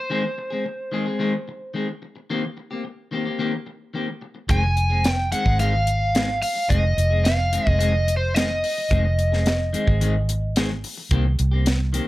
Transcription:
Already playing: overdriven electric guitar C5
0.10 clean electric guitar D#3 G#3 C4 G#4
0.24 muted clean electric guitar stroke
0.38 muted clean electric guitar stroke
0.50 clean electric guitar G#3 C4 G#4
0.65 muted clean electric guitar stroke
0.92 clean electric guitar D#3 G#3 C4 G#4
1.06 clean electric guitar G#3 C4 G#4
1.19 clean electric guitar D#3 G#3 C4 G#4
1.34 muted clean electric guitar stroke
1.48 muted clean electric guitar stroke
1.74 clean electric guitar D#3 G#3 C4 G#4
1.88 muted clean electric guitar stroke
2.02 muted clean electric guitar stroke
2.16 muted clean electric guitar stroke
2.30 clean electric guitar D#3 A#3 C4 G4
2.44 muted clean electric guitar stroke
2.57 muted clean electric guitar stroke
2.71 clean electric guitar A#3 C4 G4
2.84 muted clean electric guitar stroke
3.11 clean electric guitar D#3 A#3 C4 G4
3.25 clean electric guitar A#3 C4 G4
3.39 clean electric guitar D#3 A#3 C4 G4
3.54 muted clean electric guitar stroke
3.66 muted clean electric guitar stroke
3.94 clean electric guitar D#3 A#3 C4 G4
4.08 muted clean electric guitar stroke
4.21 muted clean electric guitar stroke
4.35 muted clean electric guitar stroke
4.49 fingered electric bass F1, clean electric guitar D#3 G#3 C4 G#4, overdriven electric guitar G#5, kick, closed hi-hat
4.63 muted clean electric guitar stroke
4.76 muted clean electric guitar stroke, closed hi-hat
4.90 clean electric guitar G#3 C4 G#4
5.04 muted clean electric guitar stroke, snare, closed hi-hat
5.09 overdriven electric guitar G5
5.32 clean electric guitar D#3 G#3 C4 G#4, overdriven electric guitar F#5, closed hi-hat
5.45 fingered electric bass G#1, clean electric guitar G#3 C4 G#4, kick
5.59 clean electric guitar D#3 G#3 C4 G#4, overdriven electric guitar F5, closed hi-hat
5.73 muted clean electric guitar stroke
5.87 muted clean electric guitar stroke, closed hi-hat
6.15 clean electric guitar D#3 G#3 C4 G#4, snare, closed hi-hat
6.29 muted clean electric guitar stroke
6.42 overdriven electric guitar F5, muted clean electric guitar stroke, open hi-hat
6.55 muted clean electric guitar stroke
6.69 fingered electric bass F1, clean electric guitar D#3 G#3 C4 G#4, overdriven electric guitar D#5, kick, closed hi-hat
6.84 muted clean electric guitar stroke
6.97 fingered electric bass F1, muted clean electric guitar stroke, closed hi-hat
7.11 clean electric guitar G#3 C4 G#4
7.24 overdriven electric guitar F5, muted clean electric guitar stroke, snare, closed hi-hat
7.52 clean electric guitar D#3 G#3 C4 G#4, closed hi-hat
7.66 fingered electric bass F1, clean electric guitar G#3 C4 G#4, overdriven electric guitar D#5, kick
7.79 clean electric guitar D#3 G#3 C4 G#4, overdriven electric guitar D#5, closed hi-hat
7.93 muted clean electric guitar stroke
8.07 muted clean electric guitar stroke, closed hi-hat
8.17 overdriven electric guitar C5
8.34 clean electric guitar D#3 G#3 C4 G#4, overdriven electric guitar D#5, snare, closed hi-hat
8.49 muted clean electric guitar stroke
8.63 muted clean electric guitar stroke, open hi-hat
8.78 muted clean electric guitar stroke
8.91 fingered electric bass F1, clean electric guitar D#3 G#3 C4 G#4, kick, closed hi-hat
9.05 muted clean electric guitar stroke
9.18 muted clean electric guitar stroke, closed hi-hat
9.32 clean electric guitar G#3 C4 G#4, snare
9.46 muted clean electric guitar stroke, snare, closed hi-hat
9.73 clean electric guitar D#3 G#3 C4 G#4, closed hi-hat
9.87 fingered electric bass G#1, clean electric guitar G#3 C4 G#4, kick
10.01 clean electric guitar D#3 G#3 C4 G#4, closed hi-hat
10.15 muted clean electric guitar stroke
10.29 muted clean electric guitar stroke, closed hi-hat
10.56 clean electric guitar D#3 G#3 C4 G#4, snare, closed hi-hat
10.71 muted clean electric guitar stroke
10.84 muted clean electric guitar stroke, open hi-hat
10.97 muted clean electric guitar stroke
11.11 fingered electric bass C2, clean electric guitar D#3 A#3 C4 G4, kick, closed hi-hat
11.25 muted clean electric guitar stroke
11.39 fingered electric bass C2, muted clean electric guitar stroke, closed hi-hat
11.51 clean electric guitar A#3 C4 G4
11.66 muted clean electric guitar stroke, snare, closed hi-hat
11.93 clean electric guitar D#3 A#3 C4 G4, closed hi-hat

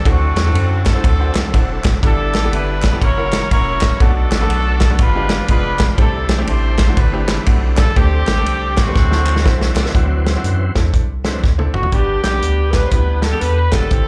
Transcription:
0.05 analog synth bass D2, upright piano D3 C4 D4 E4 F#4 A4, tonewheel organ F#3 C4 D4 E4 G#4, horn section A3 C4 F#4, kick, ride
0.12 tonewheel organ A4
0.35 analog synth bass E2, snare, clap, ride
0.45 upright piano C4 D4 E4 F#4 A4
0.53 analog synth bass F#2, ride
0.86 horn section C4 F#4 A4, kick, snare, clap, ride
0.95 upright piano C4 D4 E4 F#4 C5
1.04 analog synth bass D2, kick, ride
1.19 upright piano C4 D4 E4 F#4 C5
1.35 analog synth bass C2, snare, clap, ride
1.53 analog synth bass E1, upright piano C4 D4 E4 F#4 A4, kick, ride
1.84 analog synth bass F#1, kick, snare, clap, ride
2.02 analog synth bass G1, upright piano G2 B3 D4 E4 G4 A4, tonewheel organ G3 B3 D4 E4 A4, horn section D4 E4 A4, kick, ride
2.34 analog synth bass A1, snare, clap, ride
2.44 upright piano B3 D4 E4 G4 A4
2.52 analog synth bass G1, horn section D4 E4 B4, ride
2.82 kick, snare, clap, ride
2.92 upright piano B3 D4 E4 G4 A4
3.00 analog synth bass F#1, tonewheel organ F#3 A#3 C#4 E4 A#4, horn section E4 A#4 C#5, kick, ride
3.17 upright piano A#3 C#4 E4 F#4 A#4
3.32 snare, clap, ride
3.51 analog synth bass E1, upright piano A#3 C#4 E4 F#4 C#5, horn section E4 A#4 C#5, kick, ride
3.81 kick, snare, clap, ride
4.00 analog synth bass B1, upright piano B2 A3 B3 D4 F#4 A4, tonewheel organ F#3 A3 B3 D4 A4, horn section D4 F#4 A4, kick, ride
4.31 analog synth bass A1, snare, clap, ride
4.41 upright piano A3 B3 D4 F#4 A4
4.48 analog synth bass B1, ride
4.81 kick, snare, clap, ride
4.90 upright piano A3 B3 D4 F#4 A4
4.99 analog synth bass G1, upright piano G2, tonewheel organ F3 G#3 B3 D4 G5, horn section D4 F4 B4, kick, ride
5.15 upright piano G#3 B3 D4 F4 G4
5.30 snare, clap, ride
5.48 analog synth bass F1, upright piano G#3 B3 D4 F4 G#4, horn section D4 F4 B4, kick, ride
5.79 kick, snare, clap, ride
5.97 analog synth bass C2, upright piano C3 A3 C4 D4 E4 G4, tonewheel organ D3 G3 A3 C4 E4, horn section D4 E4 A4, kick, ride
6.28 analog synth bass B1, snare, clap, ride
6.38 upright piano A3 C4 D4 E4 G4
6.47 analog synth bass A1, horn section E4 A4 C5, ride
6.78 kick, snare, clap, ride
6.88 upright piano A3 C4 D4 E4 F#4
6.97 analog synth bass G1, horn section D4 E4 B4, kick, ride
7.12 upright piano A3 C4 D4 E4 G4
7.28 snare, clap, ride
7.46 analog synth bass B1, upright piano A3 C4 D4 E4 F#4, kick, ride
7.77 horn section A4, kick, snare, clap, ride
7.96 analog synth bass D2, tonewheel organ D3 G3 A3 C4 G4, upright piano D3 A3 C4 D4 G4 A4, horn section C4 G4, kick, ride
8.27 analog synth bass A1, snare, clap, ride
8.37 upright piano A3 C4 D4 G4 A4
8.46 analog synth bass C2, ride
8.77 horn section A3 C4 F#4, kick, snare, clap, ride
8.87 upright piano A3 C4 D4 G4 B4
8.95 analog synth bass D2, tonewheel organ D3 F#3 A3 C4 E4, upright piano D3, kick, snare
9.11 upright piano C4 D4 E4 F#4 A4, snare
9.26 clap
9.36 snare
9.44 analog synth bass B1, upright piano C4 D4 E4 F#4 C5, kick, snare
9.61 snare
9.75 analog synth bass C2, snare, clap
9.86 snare
9.94 analog synth bass D2, upright piano D3 C4 D4 E4 F#4, tonewheel organ E3 F#3 C4, kick, closed hi-hat
10.26 snare, closed hi-hat
10.36 upright piano C4 D4 E4 F#4
10.44 analog synth bass F#2, closed hi-hat
10.76 analog synth bass E2, upright piano C4 D4 E4 A4, kick, snare, closed hi-hat
10.93 analog synth bass C2, kick, closed hi-hat
11.24 tonewheel organ E3 F#3 C4, upright piano C4 D4 E4 A4, snare, closed hi-hat
11.43 analog synth bass D2, kick, snare
11.58 upright piano C4 D4 E4 A4, high tom
11.74 analog synth bass F#1, horn section F#4, alto saxophone F#4, mid tom
11.83 floor tom
11.92 analog synth bass G1, upright piano G2 G3 B3 D4 G4, horn section B3 D4 G4, alto saxophone G4, kick, closed hi-hat
12.23 analog synth bass B1, horn section B3 D4 G4, alto saxophone G4, snare, clap, closed hi-hat
12.34 upright piano G3 B3 D4 G4
12.42 analog synth bass D2, closed hi-hat
12.71 upright piano G3 B3 D4, alto saxophone B4, horn section B4, kick, snare, clap, closed hi-hat
12.75 upright piano G4
12.87 alto saxophone B4 C5, horn section B4
12.91 analog synth bass D2, upright piano G3 B3 D4 E4, horn section D4 G4, kick, closed hi-hat
13.21 alto saxophone A4, horn section A4, snare, clap, closed hi-hat
13.33 upright piano G3 B3 D4 A4, clean electric guitar G4
13.41 analog synth bass E2, clean electric guitar A4, alto saxophone B4, horn section B4, closed hi-hat
13.58 clean electric guitar B4
13.71 analog synth bass F#1, upright piano G3 B3 D4 G4, horn section C4 E4 A4, alto saxophone A4, kick, snare, clap, closed hi-hat
13.91 analog synth bass G1, upright piano G2 G3 C4 E4 G4, kick, closed hi-hat

